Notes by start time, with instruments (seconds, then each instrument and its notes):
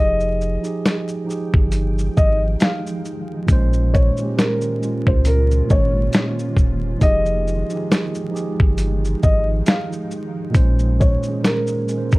Already playing: sub bass F1, ambient pad D#3 F3 G#3 D#4 G5, tine electric piano F3 D#4 G4, felt piano D#5
0.00 tine electric piano G#4
0.20 shaker
0.41 shaker
0.61 tine electric piano F3 D#4, shaker
0.65 tine electric piano G4 G#4
0.86 snare, closed hi-hat, shaker
1.09 shaker
1.25 tine electric piano F3 D#4 G4
1.30 tine electric piano G#4, shaker
1.54 sub bass G1, kick
1.72 closed hi-hat, shaker
1.99 shaker
2.17 sub bass G#1, felt piano D#5, kick, shaker
2.60 felt piano F5, snare, closed hi-hat, shaker
2.87 shaker
3.05 shaker
3.46 sub bass A#1, tine electric piano A#2 G#3 C#4, ambient pad A#3 C#4 F4, kick, closed hi-hat, shaker
3.52 tine electric piano C5
3.73 shaker
3.94 felt piano C#5, kick, shaker
4.17 tine electric piano A#2 G#3, shaker
4.22 tine electric piano C#4 G4
4.38 felt piano A#4, snare, closed hi-hat, shaker
4.61 shaker
4.79 tine electric piano A#2 G#3 C#4, shaker
4.84 tine electric piano F4
5.07 sub bass C#2, felt piano C5, kick
5.25 felt piano A#4, closed hi-hat, shaker
5.51 shaker
5.66 tine electric piano A#2 G#3 C#4, shaker
5.70 sub bass G#1, felt piano C#5, tine electric piano C#5, kick
6.13 snare, closed hi-hat, shaker
6.39 shaker
6.57 sub bass E1, kick, shaker
6.98 sub bass F1, tine electric piano F3 D#4 G4, ambient pad F3 G#3 D#4, kick, closed hi-hat, shaker
7.03 tine electric piano G#4, felt piano D#5
7.26 shaker
7.48 shaker
7.70 tine electric piano F3 D#4 G4, shaker
7.75 tine electric piano G#4
7.92 snare, closed hi-hat, shaker
8.15 shaker
8.31 tine electric piano F3 D#4 G4
8.36 tine electric piano G#4, shaker
8.60 sub bass G1, kick
8.78 ambient pad G5, closed hi-hat, shaker
9.05 shaker
9.23 sub bass G#1, felt piano D#5, kick, shaker
9.66 felt piano F5, snare, closed hi-hat, shaker
9.93 shaker
10.11 shaker
10.50 tine electric piano A#2 G#3 C#4
10.54 sub bass A#1, ambient pad A#3 C#4 F4, tine electric piano C5, kick, closed hi-hat, shaker
10.79 shaker
11.00 felt piano C#5, kick, shaker
11.23 tine electric piano A#2 G#3, shaker
11.28 tine electric piano C#4 G#4
11.44 felt piano A#4, snare, closed hi-hat, shaker
11.67 shaker
11.86 tine electric piano A#2 G#3 C#4, shaker
11.92 tine electric piano A#4
11.98 tine electric piano C5
12.12 sub bass C#2, felt piano A#4, kick, shaker